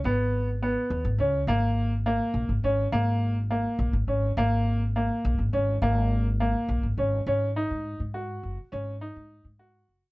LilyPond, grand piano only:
\new Staff \with { instrumentName = "Grand piano" } { \time 5/8 \key gis \minor \tempo 4 = 104 b4 b4 cis'8 | ais4 ais4 cis'8 | ais4 ais4 cis'8 | ais4 ais4 cis'8 |
ais4 ais4 cis'8 | cis'8 dis'4 fis'4 | cis'8 dis'4 fis'4 | }